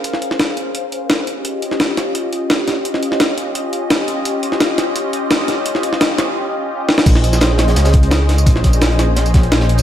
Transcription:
<<
  \new Staff \with { instrumentName = "Analog synth pad" } { \time 4/4 \key bes \dorian \tempo 4 = 171 <des' aes' bes' c'' f''>2.~ <des' aes' bes' c'' f''>8 <des' f' g' ees''>8~ | <des' f' g' ees''>1~ | <des' f' g' ees''>1~ | <des' f' g' ees''>1~ |
<des' f' g' ees''>1 | <des' aes' c'' ees''>1~ | <des' aes' c'' ees''>1 | }
  \new Staff \with { instrumentName = "Detuned saw bass" } { \clef bass \time 4/4 \key bes \dorian r1 | r1 | r1 | r1 |
r1 | bes,,2 des,2 | bes,,8. bes,,2.~ bes,,16 | }
  \new DrumStaff \with { instrumentName = "Drums" } \drummode { \time 4/4 hh16 sn16 hh16 sn16 <hh sn>8 hh8 hh8 hh8 <hh sn>8 hh8 | hh8 hh16 sn16 <hh sn>8 <hh sn>8 hh8 hh8 <hh sn>8 <hh sn>8 | hh16 sn16 hh16 sn16 <hh sn>8 hh8 hh8 hh8 <hh sn>8 hh8 | hh8 hh16 sn16 <hh sn>8 <hh sn>8 hh8 hh8 <hh sn>8 <hh sn>8 |
hh16 sn16 hh16 sn16 <hh sn>8 <hh sn>8 r4 r8 sn16 sn16 | <cymc hh bd tamb>16 sn16 <hh tamb>16 <hh sn tamb>16 <hh sn tamb>8 <hh sn>16 <hh sn>16 <hh sn tamb>16 <hh sn tamb>16 <hh bd>16 hh16 <hh sn tamb>8 <hh sn>16 <hh tamb>16 | <hh bd tamb>16 sn16 <hh bd sn tamb>16 <hh tamb>16 <hh sn tamb>16 hh16 <hh sn tamb>8 <hh sn tamb>16 <hh tamb>16 <hh bd sn>16 hh16 <hh sn tamb>16 <hh sn>16 hh16 <hh tamb>16 | }
>>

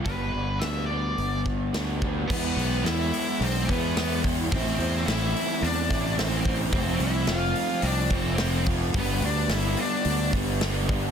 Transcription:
<<
  \new Staff \with { instrumentName = "Lead electric guitar" } { \time 4/4 \key e \phrygian \tempo 4 = 108 b'4 e''8 d''4 r4. | b4 e'4 c'8 b4 r8 | c'4 e'4 d'4 c'8. r16 | c'8 e'8 f'4 d'8 c'4 r8 |
b8 d'8 e'8 d'4 r4. | }
  \new Staff \with { instrumentName = "Overdriven electric guitar" } { \time 4/4 \key e \phrygian <g, d g b d'>4 <d g b d'>8 <g b d'>4. <d g b d'>8 <g b d'>8 | <e gis b e'>4 <e gis b e'>4. <gis b e'>8 <e gis b e'>8 <gis b e'>8 | <a, e a c' e'>4 <e a c' e'>4. <a c' e'>8 <e a c' e'>8 <a c' e'>8 | <f a c' f'>4 <f a c' f'>4. <a c' f'>8 <f a c' f'>8 <a c' f'>8 |
<g, d g b d'>4 <d g b d'>4. <g b d'>8 <d g b d'>8 <g b d'>8 | }
  \new Staff \with { instrumentName = "Fingered electric bass" } { \clef bass \time 4/4 \key e \phrygian g,,8 g,,8 d,4 g,,4 d,4 | e,8 b,,8 e,8 r8 b,,8 e,4. | a,,8 e,8 a,,8 r8 e,8 a,,4. | f,,8 c,8 f,,8 r8 c,8 f,,4. |
g,,8 d,8 g,,8 r8 d,8 g,,4. | }
  \new DrumStaff \with { instrumentName = "Drums" } \drummode { \time 4/4 <hho bd>4 <hho sn>4 hho8 bd8 <hho sn>8 bd8 | <cymc bd>8 hho8 <hho sn>8 hho8 hho8 <hho bd>8 <hho sn>8 <hho bd>8 | <hho bd>8 hho8 <hho sn>8 hho8 hho8 <hho bd sn>8 <hho sn>8 <hho bd>8 | <hho bd>8 hho8 <hho sn>8 hho8 hho8 <hho bd>8 <hho sn>8 <hho bd>8 |
<hho bd>8 hho8 <hho sn>8 hho8 hho8 <hho bd>8 <hho sn>8 <hho bd>8 | }
>>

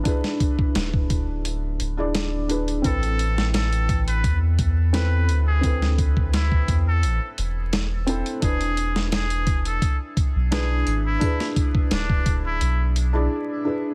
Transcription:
<<
  \new Staff \with { instrumentName = "Muted trumpet" } { \time 4/4 \key a \minor \tempo 4 = 86 r1 | a'4 a'8. b'8 r8. b'8. gis'16~ | gis'8 r8 e'8. a'8. r4. | gis'4 gis'8. a'8 r8. gis'8. e'16~ |
e'8 r8 d'8. e'8. r4. | }
  \new Staff \with { instrumentName = "Felt piano" } { \time 4/4 \key a \minor <d' e' gis' b'>2~ <d' e' gis' b'>8. <d' e' gis' d''>8. <d' e' gis' b'>8 | <c' e' a' b'>2. <c' e' a' b'>4 | <c' e' a' b'>2.~ <c' e' a' b'>8 <c' e' a' c''>8 | <d' e' b'>2. <d' e' gis' b'>4 |
<d' e' gis' b'>2~ <d' e' gis' b'>8. <d' e' gis' d''>8. <d' e' gis' b'>8 | }
  \new Staff \with { instrumentName = "Sub bass" } { \clef bass \time 4/4 \key a \minor r4 d,,4. d,,4. | a,,2 e,4. d,8~ | d,4. e,8 a,,16 r16 e,,4~ e,,16 r16 | e,,2 r8. b,,8. gis,,8 |
r4 d,,4 b,,4 r4 | }
  \new DrumStaff \with { instrumentName = "Drums" } \drummode { \time 4/4 <hh bd>16 sn16 <hh bd>16 bd16 <hh sn>16 bd16 <hh bd>8 hh8 hh8 <hh sn>8 hh16 hh16 | <hh bd>16 hh16 hh16 sn16 <hh sn>16 hh16 <hh bd>16 hh16 <hh bd>8 <hh bd>8 <hh sn>8 hh8 | <hh bd>16 sn16 <hh bd>16 bd16 <hh sn>16 bd16 <hh bd>8 hh8 hh8 <hh sn>8 hh16 hh16 | <hh bd>16 hh16 hh16 sn16 <hh sn>16 hh16 <hh bd>16 hh16 <hh bd>8 <hh bd>8 <hh sn>8 hh8 |
<hh bd>16 sn16 <hh bd>16 bd16 <hh sn>16 bd16 <hh bd>8 hh8 hh8 r4 | }
>>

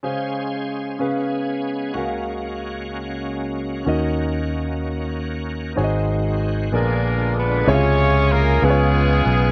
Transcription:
<<
  \new Staff \with { instrumentName = "Grand piano" } { \time 6/8 \key des \major \tempo 4. = 63 <des' aes' c'' f''>4. <des' aes' ces'' f''>4. | <des' ges' bes' f''>2. | <des' ges' bes' ees''>2. | <c' ges' aes' des'' ees''>4. <bes ces' aes' d''>4. |
<c fes' f' aes' des''>4. <ces' f' aes' ces'' des''>4. | }
  \new Staff \with { instrumentName = "Grand piano" } { \clef bass \time 6/8 \key des \major des4. des4. | des4. r4. | ees4. r4. | aes,4. bes,4. |
des4. des4. | }
  \new Staff \with { instrumentName = "Horn section" } { \time 6/8 \key des \major << { r2. | r2. | r2. | r4. <bes bes'>4 <ces' ces''>8 |
<des' des''>4 <bes bes'>8 <aes aes'>4. | } \\ { r2. | r2. | r2. | r4. <d' f'>4. |
<f' aes'>4. <ces' f'>4. | } >> }
  \new Staff \with { instrumentName = "Tonewheel organ" } { \time 6/8 \key des \major << { aes'2. | ges'2.~ | ges'2. | ges'4. aes'4. |
aes'4. aes'4. | } \\ { des'2. | des'2.~ | des'2. | c'4. d'4. |
des''2. | } >> }
  \new Staff \with { instrumentName = "Tonewheel organ" } { \clef bass \time 6/8 \key des \major << { c''4. ces'4. | <des, bes>2. | bes2. | aes4. aes4. |
r4. ces'4. | } \\ { aes2.~ | aes2. | ees2.~ | ees4. d4. |
aes2. | } >> }
  \new Staff \with { instrumentName = "Fingered electric bass" } { \clef bass \time 6/8 \key des \major r2. | r2. | ees,2. | aes,,4. bes,,4. |
des,4. des,4 ces,8 | }
>>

